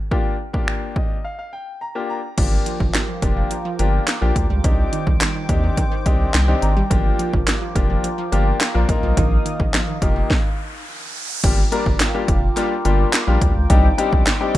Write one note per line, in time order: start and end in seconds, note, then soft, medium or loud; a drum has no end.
0.11 0.34 A#3 medium
0.11 0.35 D4 medium
0.11 0.35 F4 medium
0.11 0.35 G4 medium
0.11 kick loud
0.53 1.15 A#3 medium
0.53 1.16 D4 medium
0.53 1.16 F4 medium
0.53 1.16 G4 medium
0.53 kick medium
0.68 finger snap loud
0.96 1.23 D#5 medium
0.96 kick medium
1.25 1.37 F5 medium
1.39 1.52 F5 medium
1.53 1.79 G5 medium
1.81 2.08 A#5 medium
1.95 2.18 A#3 medium
1.95 2.19 D4 medium
1.95 2.19 F4 medium
1.95 2.19 G4 medium
2.10 2.36 A#5 medium
2.37 2.58 G1 loud
2.37 2.50 F3 medium
2.37 2.84 A#3 medium
2.37 2.84 D4 medium
2.37 4.62 F4 medium
2.37 2.84 F4 medium
2.37 2.84 G4 medium
2.37 4.62 A#4 medium
2.37 8.85 G5 medium
2.37 8.85 D6 medium
2.37 kick loud
2.37 closed hi-hat medium
2.37 crash medium
2.66 2.79 F3 medium
2.66 closed hi-hat medium
2.80 2.90 G1 loud
2.80 2.93 F3 medium
2.80 kick medium
2.94 3.07 G3 medium
2.94 snare medium
2.94 clap loud
2.94 closed hi-hat medium
3.08 3.21 F3 medium
3.22 3.43 F1 loud
3.22 3.35 F3 medium
3.22 3.53 A#3 medium
3.22 3.54 D4 medium
3.22 3.54 F4 medium
3.22 3.54 G4 medium
3.22 kick medium
3.22 closed hi-hat medium
3.37 3.49 F3 medium
3.51 3.64 F3 medium
3.51 closed hi-hat medium
3.65 3.78 F3 medium
3.79 3.99 G1 loud
3.79 3.92 F3 medium
3.79 4.02 A#3 medium
3.79 4.03 D4 medium
3.79 4.03 F4 medium
3.79 4.03 G4 medium
3.79 closed hi-hat medium
4.07 snare medium
4.07 clap loud
4.07 closed hi-hat medium
4.21 4.32 A#1 medium
4.21 4.34 F3 medium
4.21 4.45 A#3 medium
4.21 4.45 D4 medium
4.21 4.45 F4 medium
4.21 4.45 G4 medium
4.36 4.46 D2 medium
4.36 kick medium
4.36 closed hi-hat medium
4.50 4.60 C#2 medium
4.50 4.63 G3 medium
4.64 4.84 C2 loud
4.64 6.88 D#3 medium
4.64 4.77 D#3 medium
4.64 5.10 C4 medium
4.64 5.10 D4 medium
4.64 5.11 D#4 medium
4.64 5.11 G4 medium
4.64 6.88 C5 medium
4.64 kick loud
4.64 closed hi-hat medium
4.93 5.05 D#3 medium
4.93 closed hi-hat medium
5.07 5.17 C2 medium
5.07 5.19 D#3 medium
5.07 kick medium
5.21 5.33 G3 medium
5.21 snare medium
5.21 clap loud
5.21 closed hi-hat medium
5.35 5.48 D#3 medium
5.49 5.69 D#2 loud
5.49 5.62 D#3 medium
5.49 5.80 C4 medium
5.49 5.80 D4 medium
5.49 5.80 D#4 medium
5.49 5.80 G4 medium
5.49 kick loud
5.49 closed hi-hat medium
5.63 5.76 D#3 medium
5.77 5.90 D#3 medium
5.77 kick medium
5.77 closed hi-hat medium
5.92 6.04 D#3 medium
6.06 6.26 C2 medium
6.06 6.18 D#3 medium
6.06 6.29 C4 medium
6.06 6.29 D4 medium
6.06 6.29 D#4 medium
6.06 6.29 G4 medium
6.06 6.32 D#5 medium
6.06 kick medium
6.06 closed hi-hat medium
6.34 6.54 C2 loud
6.34 6.61 G5 medium
6.34 snare medium
6.34 clap loud
6.34 closed hi-hat medium
6.48 6.61 D#3 medium
6.48 6.71 C4 medium
6.48 6.71 D4 medium
6.48 6.71 D#4 medium
6.48 6.71 G4 medium
6.62 6.82 G#1 medium
6.62 6.89 A#5 medium
6.62 closed hi-hat medium
6.77 6.89 G3 medium
6.90 7.11 G1 loud
6.90 7.03 F3 medium
6.90 7.37 A#3 medium
6.90 7.37 D4 medium
6.90 7.37 F4 medium
6.90 8.87 F4 medium
6.90 7.37 G4 medium
6.90 10.27 A#4 medium
6.90 kick loud
6.90 closed hi-hat medium
7.19 7.32 F3 medium
7.19 closed hi-hat medium
7.33 7.43 G1 loud
7.33 7.46 F3 medium
7.33 kick medium
7.47 7.60 G3 medium
7.47 snare medium
7.47 clap loud
7.47 closed hi-hat medium
7.62 7.74 F3 medium
7.75 7.96 F1 loud
7.75 7.88 F3 medium
7.75 8.06 A#3 medium
7.75 8.06 D4 medium
7.75 8.06 F4 medium
7.75 8.07 G4 medium
7.75 kick loud
7.75 closed hi-hat medium
7.90 8.02 F3 medium
8.04 8.16 F3 medium
8.04 closed hi-hat medium
8.18 8.31 F3 medium
8.32 8.52 G1 medium
8.32 8.45 F3 medium
8.32 8.55 A#3 medium
8.32 8.55 D4 medium
8.32 8.55 F4 medium
8.32 8.56 G4 loud
8.32 closed hi-hat medium
8.60 snare medium
8.60 clap loud
8.60 closed hi-hat medium
8.74 8.85 A#1 medium
8.74 8.87 F3 medium
8.74 8.87 A#3 medium
8.74 8.89 D4 medium
8.74 8.87 F4 medium
8.74 8.88 A#4 medium
8.88 8.99 A#1 loud
8.88 9.79 A#3 medium
8.88 10.29 D#4 medium
8.88 9.79 D#4 medium
8.88 9.79 F4 medium
8.88 9.79 A#4 medium
8.88 10.29 F5 medium
8.88 10.29 D#6 medium
8.88 kick medium
8.88 closed hi-hat medium
9.03 9.13 B1 medium
9.03 9.16 F3 medium
9.17 9.37 A#1 loud
9.17 9.30 D#3 medium
9.17 kick loud
9.17 closed hi-hat loud
9.17 riser medium
9.46 9.58 D#3 medium
9.46 closed hi-hat medium
9.60 9.70 A#1 medium
9.60 9.72 D#3 medium
9.60 kick medium
9.74 9.86 F3 medium
9.74 snare medium
9.74 clap loud
9.74 closed hi-hat medium
9.88 10.00 D#3 medium
10.02 10.22 F1 medium
10.02 10.14 D#3 medium
10.02 10.30 A#3 medium
10.02 10.30 D#4 medium
10.02 10.30 F4 medium
10.02 10.30 G4 medium
10.02 kick loud
10.02 closed hi-hat medium
10.16 10.29 D#3 medium
10.30 kick loud
10.30 snare medium
11.44 11.64 G1 loud
11.44 11.59 G3 medium
11.44 11.59 A#3 medium
11.44 11.59 D4 medium
11.44 13.68 F4 medium
11.44 11.59 F4 medium
11.44 11.59 G4 loud
11.44 13.68 A#4 medium
11.44 14.58 G5 medium
11.44 14.58 D6 medium
11.44 kick loud
11.44 closed hi-hat medium
11.44 crash loud
11.72 11.95 G3 medium
11.72 11.95 A#3 medium
11.72 11.95 D4 medium
11.72 11.95 F4 medium
11.72 11.95 A#4 loud
11.72 closed hi-hat medium
11.86 11.96 G1 loud
11.86 kick medium
12.00 snare medium
12.00 clap loud
12.00 closed hi-hat medium
12.14 12.38 G3 medium
12.14 12.38 A#3 medium
12.14 12.38 D4 medium
12.14 12.38 F4 medium
12.14 12.38 G4 medium
12.28 12.48 F1 loud
12.28 kick loud
12.28 closed hi-hat medium
12.56 12.72 G3 medium
12.56 12.72 A#3 medium
12.56 12.72 D4 medium
12.56 12.72 F4 medium
12.56 12.72 G4 loud
12.56 clap medium
12.56 closed hi-hat medium
12.85 13.05 G1 loud
12.85 13.08 G3 medium
12.85 13.08 A#3 medium
12.85 13.08 D4 medium
12.85 13.08 F4 medium
12.85 13.08 G4 medium
12.85 closed hi-hat medium
13.13 snare medium
13.13 clap loud
13.13 clap medium
13.13 closed hi-hat medium
13.27 13.38 A#1 medium
13.27 13.51 G3 medium
13.27 13.51 A#3 medium
13.27 13.51 D4 medium
13.27 13.51 F4 medium
13.27 13.51 G4 medium
13.41 13.52 D2 medium
13.41 kick medium
13.41 closed hi-hat medium
13.56 13.66 C#2 medium
13.70 13.90 C2 loud
13.70 13.85 G3 medium
13.70 13.85 C4 medium
13.70 13.85 D4 medium
13.70 13.85 D#4 medium
13.70 14.58 D#4 medium
13.70 13.86 G4 loud
13.70 14.58 C5 medium
13.70 kick loud
13.70 closed hi-hat medium
13.98 14.21 G3 medium
13.98 14.21 C4 medium
13.98 14.21 D4 medium
13.98 14.21 D#4 medium
13.98 14.21 G4 loud
13.98 closed hi-hat medium
14.13 14.23 C2 loud
14.13 kick medium
14.26 snare medium
14.26 clap loud
14.26 closed hi-hat medium
14.40 14.58 G3 medium
14.40 14.58 C4 medium
14.40 14.58 D4 medium
14.40 14.58 D#4 medium
14.40 14.58 G4 medium
14.55 14.58 D#2 loud
14.55 kick loud
14.55 closed hi-hat medium